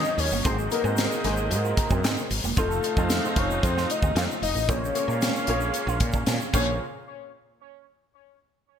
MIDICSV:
0, 0, Header, 1, 9, 480
1, 0, Start_track
1, 0, Key_signature, -5, "minor"
1, 0, Tempo, 529568
1, 406, Time_signature, 4, 2, 24, 8
1, 7969, End_track
2, 0, Start_track
2, 0, Title_t, "Analog synth lead"
2, 0, Program_c, 0, 81
2, 0, Note_on_c, 0, 75, 117
2, 178, Note_on_c, 0, 73, 102
2, 191, Note_off_c, 0, 75, 0
2, 399, Note_off_c, 0, 73, 0
2, 405, Note_on_c, 0, 72, 100
2, 513, Note_off_c, 0, 72, 0
2, 649, Note_on_c, 0, 70, 103
2, 1129, Note_on_c, 0, 68, 92
2, 1143, Note_off_c, 0, 70, 0
2, 1307, Note_on_c, 0, 69, 68
2, 1321, Note_off_c, 0, 68, 0
2, 1379, Note_on_c, 0, 70, 104
2, 1393, Note_off_c, 0, 69, 0
2, 2092, Note_off_c, 0, 70, 0
2, 2343, Note_on_c, 0, 69, 103
2, 3064, Note_on_c, 0, 73, 92
2, 3077, Note_off_c, 0, 69, 0
2, 3294, Note_off_c, 0, 73, 0
2, 3300, Note_on_c, 0, 72, 111
2, 3545, Note_on_c, 0, 75, 106
2, 3558, Note_off_c, 0, 72, 0
2, 3779, Note_on_c, 0, 77, 115
2, 3793, Note_off_c, 0, 75, 0
2, 4009, Note_off_c, 0, 77, 0
2, 4015, Note_on_c, 0, 75, 100
2, 4257, Note_on_c, 0, 73, 105
2, 4270, Note_off_c, 0, 75, 0
2, 5691, Note_off_c, 0, 73, 0
2, 5929, Note_on_c, 0, 73, 94
2, 6150, Note_off_c, 0, 73, 0
2, 7969, End_track
3, 0, Start_track
3, 0, Title_t, "Horn section"
3, 0, Program_c, 1, 61
3, 0, Note_on_c, 1, 66, 90
3, 0, Note_on_c, 1, 70, 82
3, 0, Note_on_c, 1, 73, 98
3, 133, Note_off_c, 1, 70, 0
3, 137, Note_off_c, 1, 66, 0
3, 138, Note_off_c, 1, 73, 0
3, 402, Note_on_c, 1, 72, 87
3, 406, Note_on_c, 1, 68, 89
3, 410, Note_on_c, 1, 75, 93
3, 2050, Note_off_c, 1, 72, 0
3, 2051, Note_off_c, 1, 68, 0
3, 2054, Note_off_c, 1, 75, 0
3, 2328, Note_on_c, 1, 77, 91
3, 2329, Note_on_c, 1, 72, 87
3, 2330, Note_on_c, 1, 69, 90
3, 3972, Note_off_c, 1, 77, 0
3, 3973, Note_off_c, 1, 69, 0
3, 3973, Note_off_c, 1, 72, 0
3, 4247, Note_on_c, 1, 73, 77
3, 4249, Note_on_c, 1, 65, 89
3, 4252, Note_on_c, 1, 77, 94
3, 5893, Note_off_c, 1, 73, 0
3, 5894, Note_off_c, 1, 65, 0
3, 5896, Note_off_c, 1, 77, 0
3, 5917, Note_on_c, 1, 77, 95
3, 5919, Note_on_c, 1, 61, 83
3, 5921, Note_on_c, 1, 72, 80
3, 6087, Note_off_c, 1, 77, 0
3, 6088, Note_off_c, 1, 61, 0
3, 6090, Note_off_c, 1, 72, 0
3, 7969, End_track
4, 0, Start_track
4, 0, Title_t, "Grand piano"
4, 0, Program_c, 2, 0
4, 0, Control_c, 2, 64, 127
4, 0, Note_on_c, 2, 58, 80
4, 0, Note_on_c, 2, 63, 69
4, 0, Note_on_c, 2, 65, 65
4, 0, Note_on_c, 2, 66, 74
4, 0, Note_on_c, 2, 73, 81
4, 403, Note_off_c, 2, 58, 0
4, 403, Note_on_c, 2, 58, 77
4, 408, Note_off_c, 2, 63, 0
4, 408, Note_on_c, 2, 63, 71
4, 409, Note_off_c, 2, 66, 0
4, 409, Note_on_c, 2, 66, 68
4, 415, Note_on_c, 2, 68, 74
4, 415, Note_on_c, 2, 72, 82
4, 419, Control_c, 2, 64, 0
4, 424, Note_off_c, 2, 65, 0
4, 428, Note_off_c, 2, 73, 0
4, 576, Control_c, 2, 64, 127
4, 591, Note_off_c, 2, 58, 0
4, 594, Note_off_c, 2, 63, 0
4, 594, Note_off_c, 2, 66, 0
4, 597, Note_off_c, 2, 68, 0
4, 597, Note_off_c, 2, 72, 0
4, 650, Note_on_c, 2, 58, 74
4, 656, Note_on_c, 2, 63, 70
4, 656, Note_on_c, 2, 66, 75
4, 657, Note_on_c, 2, 68, 72
4, 660, Note_on_c, 2, 71, 69
4, 711, Note_off_c, 2, 71, 0
4, 724, Note_on_c, 2, 72, 85
4, 1021, Note_off_c, 2, 58, 0
4, 1024, Note_off_c, 2, 63, 0
4, 1024, Note_off_c, 2, 66, 0
4, 1025, Note_off_c, 2, 68, 0
4, 1058, Note_off_c, 2, 72, 0
4, 1132, Note_on_c, 2, 58, 77
4, 1136, Note_on_c, 2, 63, 66
4, 1140, Note_on_c, 2, 66, 67
4, 1144, Note_on_c, 2, 68, 69
4, 1146, Note_on_c, 2, 72, 81
4, 1875, Note_off_c, 2, 58, 0
4, 1878, Note_off_c, 2, 63, 0
4, 1879, Note_off_c, 2, 66, 0
4, 1881, Note_off_c, 2, 68, 0
4, 1882, Note_off_c, 2, 72, 0
4, 2325, Note_on_c, 2, 63, 66
4, 2327, Note_on_c, 2, 60, 73
4, 2333, Note_on_c, 2, 65, 70
4, 2334, Note_on_c, 2, 72, 84
4, 2336, Note_on_c, 2, 69, 70
4, 2338, Control_c, 2, 64, 0
4, 2504, Control_c, 2, 64, 127
4, 2605, Note_off_c, 2, 63, 0
4, 2606, Note_off_c, 2, 60, 0
4, 2609, Note_off_c, 2, 65, 0
4, 2609, Note_off_c, 2, 72, 0
4, 2610, Note_off_c, 2, 69, 0
4, 2686, Note_on_c, 2, 60, 76
4, 2688, Note_on_c, 2, 63, 75
4, 2693, Note_on_c, 2, 65, 71
4, 2697, Note_on_c, 2, 69, 73
4, 2698, Note_on_c, 2, 72, 83
4, 2872, Note_off_c, 2, 60, 0
4, 2873, Note_off_c, 2, 63, 0
4, 2875, Note_off_c, 2, 65, 0
4, 2878, Note_off_c, 2, 69, 0
4, 2878, Note_off_c, 2, 72, 0
4, 2928, Note_on_c, 2, 60, 80
4, 2932, Note_on_c, 2, 63, 72
4, 2933, Note_on_c, 2, 65, 67
4, 2939, Note_on_c, 2, 68, 58
4, 2941, Note_on_c, 2, 72, 83
4, 2989, Note_off_c, 2, 68, 0
4, 2994, Note_on_c, 2, 69, 73
4, 3673, Note_off_c, 2, 60, 0
4, 3675, Note_off_c, 2, 63, 0
4, 3676, Note_off_c, 2, 65, 0
4, 3680, Note_off_c, 2, 72, 0
4, 3706, Note_off_c, 2, 69, 0
4, 4243, Note_on_c, 2, 58, 76
4, 4244, Note_on_c, 2, 61, 72
4, 4246, Note_on_c, 2, 65, 66
4, 4253, Control_c, 2, 64, 0
4, 4253, Note_on_c, 2, 68, 67
4, 4253, Note_on_c, 2, 72, 80
4, 4412, Control_c, 2, 64, 127
4, 4431, Note_off_c, 2, 58, 0
4, 4431, Note_off_c, 2, 61, 0
4, 4432, Note_off_c, 2, 65, 0
4, 4435, Note_off_c, 2, 68, 0
4, 4435, Note_off_c, 2, 72, 0
4, 4480, Note_on_c, 2, 61, 68
4, 4483, Note_on_c, 2, 65, 72
4, 4484, Note_on_c, 2, 58, 80
4, 4489, Note_on_c, 2, 68, 70
4, 4492, Note_on_c, 2, 73, 79
4, 4856, Note_off_c, 2, 61, 0
4, 4857, Note_off_c, 2, 65, 0
4, 4858, Note_off_c, 2, 58, 0
4, 4861, Note_off_c, 2, 68, 0
4, 4862, Note_off_c, 2, 73, 0
4, 4974, Note_on_c, 2, 58, 84
4, 4976, Note_on_c, 2, 61, 74
4, 4977, Note_on_c, 2, 65, 77
4, 4982, Note_on_c, 2, 68, 83
4, 4986, Note_on_c, 2, 73, 89
4, 5717, Note_off_c, 2, 58, 0
4, 5718, Note_off_c, 2, 61, 0
4, 5719, Note_off_c, 2, 65, 0
4, 5721, Note_off_c, 2, 68, 0
4, 5723, Note_off_c, 2, 73, 0
4, 5932, Note_on_c, 2, 61, 69
4, 5934, Note_on_c, 2, 68, 65
4, 5935, Control_c, 2, 64, 0
4, 5935, Note_on_c, 2, 65, 61
4, 5936, Note_on_c, 2, 58, 64
4, 5936, Note_on_c, 2, 72, 72
4, 6033, Control_c, 2, 64, 127
4, 6152, Note_off_c, 2, 61, 0
4, 6153, Note_off_c, 2, 68, 0
4, 6154, Note_off_c, 2, 58, 0
4, 6154, Note_off_c, 2, 65, 0
4, 6154, Note_off_c, 2, 72, 0
4, 6176, Control_c, 2, 64, 0
4, 7969, End_track
5, 0, Start_track
5, 0, Title_t, "Clean electric guitar"
5, 0, Program_c, 3, 27
5, 294, Note_on_c, 3, 58, 82
5, 387, Note_off_c, 3, 58, 0
5, 418, Note_on_c, 3, 56, 86
5, 509, Note_off_c, 3, 56, 0
5, 767, Note_on_c, 3, 60, 82
5, 863, Note_off_c, 3, 60, 0
5, 1125, Note_on_c, 3, 63, 84
5, 1222, Note_off_c, 3, 63, 0
5, 1492, Note_on_c, 3, 65, 69
5, 1585, Note_off_c, 3, 65, 0
5, 1732, Note_on_c, 3, 60, 76
5, 1825, Note_off_c, 3, 60, 0
5, 1856, Note_on_c, 3, 60, 77
5, 1948, Note_off_c, 3, 60, 0
5, 2216, Note_on_c, 3, 58, 86
5, 2308, Note_off_c, 3, 58, 0
5, 2338, Note_on_c, 3, 65, 83
5, 2429, Note_off_c, 3, 65, 0
5, 2699, Note_on_c, 3, 60, 83
5, 2789, Note_off_c, 3, 60, 0
5, 3052, Note_on_c, 3, 63, 87
5, 3145, Note_off_c, 3, 63, 0
5, 3415, Note_on_c, 3, 65, 70
5, 3507, Note_off_c, 3, 65, 0
5, 3653, Note_on_c, 3, 60, 69
5, 3746, Note_off_c, 3, 60, 0
5, 3776, Note_on_c, 3, 60, 77
5, 3868, Note_off_c, 3, 60, 0
5, 4129, Note_on_c, 3, 57, 76
5, 4224, Note_off_c, 3, 57, 0
5, 4252, Note_on_c, 3, 58, 85
5, 4346, Note_off_c, 3, 58, 0
5, 4603, Note_on_c, 3, 61, 80
5, 4700, Note_off_c, 3, 61, 0
5, 4963, Note_on_c, 3, 63, 78
5, 5060, Note_off_c, 3, 63, 0
5, 5327, Note_on_c, 3, 65, 73
5, 5422, Note_off_c, 3, 65, 0
5, 5567, Note_on_c, 3, 61, 77
5, 5663, Note_off_c, 3, 61, 0
5, 5692, Note_on_c, 3, 61, 67
5, 5786, Note_off_c, 3, 61, 0
5, 5927, Note_on_c, 3, 58, 87
5, 6070, Note_off_c, 3, 58, 0
5, 7969, End_track
6, 0, Start_track
6, 0, Title_t, "String section"
6, 0, Program_c, 4, 48
6, 0, Note_on_c, 4, 51, 87
6, 0, Note_on_c, 4, 54, 94
6, 0, Note_on_c, 4, 58, 78
6, 0, Note_on_c, 4, 61, 81
6, 0, Note_on_c, 4, 77, 80
6, 387, Note_off_c, 4, 61, 0
6, 387, Note_off_c, 4, 77, 0
6, 388, Note_off_c, 4, 51, 0
6, 389, Note_off_c, 4, 58, 0
6, 409, Note_on_c, 4, 56, 85
6, 410, Note_on_c, 4, 60, 80
6, 2288, Note_off_c, 4, 54, 0
6, 2307, Note_off_c, 4, 56, 0
6, 2307, Note_off_c, 4, 60, 0
6, 2331, Note_on_c, 4, 57, 83
6, 2331, Note_on_c, 4, 63, 102
6, 2334, Note_on_c, 4, 53, 93
6, 4228, Note_off_c, 4, 57, 0
6, 4228, Note_off_c, 4, 63, 0
6, 4230, Note_off_c, 4, 53, 0
6, 4247, Note_on_c, 4, 56, 80
6, 4248, Note_on_c, 4, 58, 76
6, 4249, Note_on_c, 4, 61, 92
6, 5910, Note_off_c, 4, 56, 0
6, 5910, Note_off_c, 4, 58, 0
6, 5911, Note_off_c, 4, 61, 0
6, 5930, Note_on_c, 4, 58, 62
6, 5930, Note_on_c, 4, 60, 59
6, 5930, Note_on_c, 4, 68, 72
6, 5931, Note_on_c, 4, 46, 63
6, 5936, Note_on_c, 4, 61, 57
6, 6151, Note_off_c, 4, 46, 0
6, 6151, Note_off_c, 4, 58, 0
6, 6151, Note_off_c, 4, 60, 0
6, 6151, Note_off_c, 4, 68, 0
6, 6154, Note_off_c, 4, 61, 0
6, 7969, End_track
7, 0, Start_track
7, 0, Title_t, "Fretless electric bass"
7, 0, Program_c, 5, 35
7, 159, Note_on_c, 5, 39, 93
7, 261, Note_off_c, 5, 39, 0
7, 286, Note_on_c, 5, 31, 88
7, 385, Note_off_c, 5, 31, 0
7, 409, Note_on_c, 5, 32, 109
7, 607, Note_off_c, 5, 32, 0
7, 760, Note_on_c, 5, 44, 104
7, 962, Note_off_c, 5, 44, 0
7, 1126, Note_on_c, 5, 32, 90
7, 1364, Note_on_c, 5, 44, 99
7, 1378, Note_off_c, 5, 32, 0
7, 1564, Note_off_c, 5, 44, 0
7, 1725, Note_on_c, 5, 42, 89
7, 1850, Note_off_c, 5, 42, 0
7, 1850, Note_on_c, 5, 44, 96
7, 1947, Note_off_c, 5, 44, 0
7, 2090, Note_on_c, 5, 32, 90
7, 2187, Note_off_c, 5, 32, 0
7, 2209, Note_on_c, 5, 28, 82
7, 2307, Note_off_c, 5, 28, 0
7, 2328, Note_on_c, 5, 29, 114
7, 2526, Note_off_c, 5, 29, 0
7, 2690, Note_on_c, 5, 41, 92
7, 2887, Note_off_c, 5, 41, 0
7, 3049, Note_on_c, 5, 29, 91
7, 3246, Note_off_c, 5, 29, 0
7, 3291, Note_on_c, 5, 41, 105
7, 3487, Note_off_c, 5, 41, 0
7, 3647, Note_on_c, 5, 39, 92
7, 3746, Note_off_c, 5, 39, 0
7, 3766, Note_on_c, 5, 41, 104
7, 3865, Note_off_c, 5, 41, 0
7, 4007, Note_on_c, 5, 29, 83
7, 4105, Note_off_c, 5, 29, 0
7, 4123, Note_on_c, 5, 33, 86
7, 4250, Note_off_c, 5, 33, 0
7, 4250, Note_on_c, 5, 34, 117
7, 4446, Note_off_c, 5, 34, 0
7, 4603, Note_on_c, 5, 46, 85
7, 4803, Note_off_c, 5, 46, 0
7, 4966, Note_on_c, 5, 34, 83
7, 5164, Note_off_c, 5, 34, 0
7, 5319, Note_on_c, 5, 34, 94
7, 5421, Note_off_c, 5, 34, 0
7, 5442, Note_on_c, 5, 46, 90
7, 5642, Note_off_c, 5, 46, 0
7, 5684, Note_on_c, 5, 46, 93
7, 5784, Note_off_c, 5, 46, 0
7, 5926, Note_on_c, 5, 34, 96
7, 6149, Note_off_c, 5, 34, 0
7, 7969, End_track
8, 0, Start_track
8, 0, Title_t, "Muted clean electric guitar strokes"
8, 183, Note_on_c, 9, 29, 45
8, 273, Note_off_c, 9, 29, 0
8, 657, Note_on_c, 9, 29, 42
8, 747, Note_off_c, 9, 29, 0
8, 1614, Note_on_c, 9, 29, 44
8, 1704, Note_off_c, 9, 29, 0
8, 2101, Note_on_c, 9, 29, 46
8, 2192, Note_off_c, 9, 29, 0
8, 2578, Note_on_c, 9, 29, 48
8, 2669, Note_off_c, 9, 29, 0
8, 3533, Note_on_c, 9, 29, 42
8, 3624, Note_off_c, 9, 29, 0
8, 4011, Note_on_c, 9, 29, 46
8, 4102, Note_off_c, 9, 29, 0
8, 4489, Note_on_c, 9, 29, 48
8, 4579, Note_off_c, 9, 29, 0
8, 5445, Note_on_c, 9, 29, 45
8, 5535, Note_off_c, 9, 29, 0
8, 7969, End_track
9, 0, Start_track
9, 0, Title_t, "Drums"
9, 39, Note_on_c, 9, 82, 48
9, 130, Note_off_c, 9, 82, 0
9, 167, Note_on_c, 9, 46, 78
9, 167, Note_on_c, 9, 82, 49
9, 258, Note_off_c, 9, 46, 0
9, 258, Note_off_c, 9, 82, 0
9, 283, Note_on_c, 9, 82, 55
9, 374, Note_off_c, 9, 82, 0
9, 405, Note_on_c, 9, 82, 72
9, 406, Note_on_c, 9, 42, 90
9, 409, Note_on_c, 9, 36, 123
9, 496, Note_off_c, 9, 42, 0
9, 496, Note_off_c, 9, 82, 0
9, 500, Note_off_c, 9, 36, 0
9, 533, Note_on_c, 9, 82, 52
9, 623, Note_off_c, 9, 82, 0
9, 642, Note_on_c, 9, 82, 48
9, 650, Note_on_c, 9, 42, 76
9, 732, Note_off_c, 9, 82, 0
9, 741, Note_off_c, 9, 42, 0
9, 769, Note_on_c, 9, 82, 46
9, 859, Note_off_c, 9, 82, 0
9, 876, Note_on_c, 9, 82, 76
9, 889, Note_on_c, 9, 42, 94
9, 893, Note_on_c, 9, 38, 109
9, 967, Note_off_c, 9, 82, 0
9, 980, Note_off_c, 9, 42, 0
9, 984, Note_off_c, 9, 38, 0
9, 1010, Note_on_c, 9, 82, 53
9, 1101, Note_off_c, 9, 82, 0
9, 1127, Note_on_c, 9, 42, 72
9, 1136, Note_on_c, 9, 38, 35
9, 1217, Note_off_c, 9, 42, 0
9, 1227, Note_off_c, 9, 38, 0
9, 1240, Note_on_c, 9, 82, 58
9, 1331, Note_off_c, 9, 82, 0
9, 1369, Note_on_c, 9, 42, 68
9, 1375, Note_on_c, 9, 82, 68
9, 1460, Note_off_c, 9, 42, 0
9, 1466, Note_off_c, 9, 82, 0
9, 1494, Note_on_c, 9, 82, 47
9, 1585, Note_off_c, 9, 82, 0
9, 1607, Note_on_c, 9, 42, 88
9, 1608, Note_on_c, 9, 36, 88
9, 1612, Note_on_c, 9, 82, 49
9, 1697, Note_off_c, 9, 42, 0
9, 1699, Note_off_c, 9, 36, 0
9, 1702, Note_off_c, 9, 82, 0
9, 1721, Note_on_c, 9, 82, 53
9, 1728, Note_on_c, 9, 36, 83
9, 1811, Note_off_c, 9, 82, 0
9, 1818, Note_off_c, 9, 36, 0
9, 1851, Note_on_c, 9, 42, 88
9, 1852, Note_on_c, 9, 82, 60
9, 1856, Note_on_c, 9, 38, 110
9, 1942, Note_off_c, 9, 42, 0
9, 1943, Note_off_c, 9, 82, 0
9, 1947, Note_off_c, 9, 38, 0
9, 1970, Note_on_c, 9, 82, 50
9, 2060, Note_off_c, 9, 82, 0
9, 2091, Note_on_c, 9, 46, 80
9, 2093, Note_on_c, 9, 82, 52
9, 2181, Note_off_c, 9, 46, 0
9, 2183, Note_off_c, 9, 82, 0
9, 2212, Note_on_c, 9, 82, 59
9, 2302, Note_off_c, 9, 82, 0
9, 2327, Note_on_c, 9, 82, 77
9, 2331, Note_on_c, 9, 36, 122
9, 2418, Note_off_c, 9, 82, 0
9, 2422, Note_off_c, 9, 36, 0
9, 2458, Note_on_c, 9, 82, 50
9, 2549, Note_off_c, 9, 82, 0
9, 2566, Note_on_c, 9, 82, 49
9, 2574, Note_on_c, 9, 42, 73
9, 2656, Note_off_c, 9, 82, 0
9, 2664, Note_off_c, 9, 42, 0
9, 2691, Note_on_c, 9, 36, 87
9, 2693, Note_on_c, 9, 82, 44
9, 2781, Note_off_c, 9, 36, 0
9, 2784, Note_off_c, 9, 82, 0
9, 2808, Note_on_c, 9, 42, 97
9, 2808, Note_on_c, 9, 82, 78
9, 2812, Note_on_c, 9, 38, 109
9, 2899, Note_off_c, 9, 42, 0
9, 2899, Note_off_c, 9, 82, 0
9, 2902, Note_off_c, 9, 38, 0
9, 2944, Note_on_c, 9, 82, 47
9, 3035, Note_off_c, 9, 82, 0
9, 3047, Note_on_c, 9, 42, 69
9, 3049, Note_on_c, 9, 36, 95
9, 3057, Note_on_c, 9, 38, 33
9, 3138, Note_off_c, 9, 42, 0
9, 3139, Note_off_c, 9, 36, 0
9, 3147, Note_off_c, 9, 38, 0
9, 3178, Note_on_c, 9, 82, 54
9, 3268, Note_off_c, 9, 82, 0
9, 3292, Note_on_c, 9, 42, 68
9, 3293, Note_on_c, 9, 36, 89
9, 3304, Note_on_c, 9, 82, 70
9, 3382, Note_off_c, 9, 42, 0
9, 3383, Note_off_c, 9, 36, 0
9, 3394, Note_off_c, 9, 82, 0
9, 3420, Note_on_c, 9, 38, 38
9, 3428, Note_on_c, 9, 82, 51
9, 3511, Note_off_c, 9, 38, 0
9, 3519, Note_off_c, 9, 82, 0
9, 3533, Note_on_c, 9, 42, 83
9, 3542, Note_on_c, 9, 82, 46
9, 3624, Note_off_c, 9, 42, 0
9, 3632, Note_off_c, 9, 82, 0
9, 3648, Note_on_c, 9, 36, 85
9, 3649, Note_on_c, 9, 82, 55
9, 3739, Note_off_c, 9, 36, 0
9, 3740, Note_off_c, 9, 82, 0
9, 3772, Note_on_c, 9, 42, 88
9, 3777, Note_on_c, 9, 38, 111
9, 3778, Note_on_c, 9, 82, 57
9, 3863, Note_off_c, 9, 42, 0
9, 3868, Note_off_c, 9, 38, 0
9, 3869, Note_off_c, 9, 82, 0
9, 3907, Note_on_c, 9, 82, 47
9, 3997, Note_off_c, 9, 82, 0
9, 4013, Note_on_c, 9, 46, 71
9, 4027, Note_on_c, 9, 82, 47
9, 4103, Note_off_c, 9, 46, 0
9, 4118, Note_off_c, 9, 82, 0
9, 4140, Note_on_c, 9, 82, 62
9, 4231, Note_off_c, 9, 82, 0
9, 4249, Note_on_c, 9, 36, 111
9, 4249, Note_on_c, 9, 42, 92
9, 4256, Note_on_c, 9, 82, 70
9, 4340, Note_off_c, 9, 36, 0
9, 4340, Note_off_c, 9, 42, 0
9, 4347, Note_off_c, 9, 82, 0
9, 4394, Note_on_c, 9, 82, 51
9, 4484, Note_off_c, 9, 82, 0
9, 4489, Note_on_c, 9, 42, 73
9, 4495, Note_on_c, 9, 82, 49
9, 4580, Note_off_c, 9, 42, 0
9, 4585, Note_off_c, 9, 82, 0
9, 4619, Note_on_c, 9, 82, 45
9, 4709, Note_off_c, 9, 82, 0
9, 4726, Note_on_c, 9, 82, 71
9, 4733, Note_on_c, 9, 42, 93
9, 4736, Note_on_c, 9, 38, 111
9, 4817, Note_off_c, 9, 82, 0
9, 4823, Note_off_c, 9, 42, 0
9, 4827, Note_off_c, 9, 38, 0
9, 4855, Note_on_c, 9, 82, 50
9, 4946, Note_off_c, 9, 82, 0
9, 4959, Note_on_c, 9, 42, 68
9, 5050, Note_off_c, 9, 42, 0
9, 5080, Note_on_c, 9, 82, 51
9, 5170, Note_off_c, 9, 82, 0
9, 5200, Note_on_c, 9, 42, 68
9, 5209, Note_on_c, 9, 82, 67
9, 5291, Note_off_c, 9, 42, 0
9, 5300, Note_off_c, 9, 82, 0
9, 5334, Note_on_c, 9, 82, 49
9, 5424, Note_off_c, 9, 82, 0
9, 5440, Note_on_c, 9, 42, 83
9, 5440, Note_on_c, 9, 82, 46
9, 5443, Note_on_c, 9, 36, 96
9, 5530, Note_off_c, 9, 42, 0
9, 5531, Note_off_c, 9, 82, 0
9, 5534, Note_off_c, 9, 36, 0
9, 5550, Note_on_c, 9, 82, 51
9, 5562, Note_on_c, 9, 36, 82
9, 5641, Note_off_c, 9, 82, 0
9, 5653, Note_off_c, 9, 36, 0
9, 5678, Note_on_c, 9, 42, 90
9, 5683, Note_on_c, 9, 38, 106
9, 5683, Note_on_c, 9, 82, 59
9, 5769, Note_off_c, 9, 42, 0
9, 5774, Note_off_c, 9, 38, 0
9, 5774, Note_off_c, 9, 82, 0
9, 5807, Note_on_c, 9, 82, 46
9, 5898, Note_off_c, 9, 82, 0
9, 5925, Note_on_c, 9, 36, 103
9, 5927, Note_on_c, 9, 49, 84
9, 5928, Note_on_c, 9, 82, 88
9, 6016, Note_off_c, 9, 36, 0
9, 6017, Note_off_c, 9, 49, 0
9, 6019, Note_off_c, 9, 82, 0
9, 7969, End_track
0, 0, End_of_file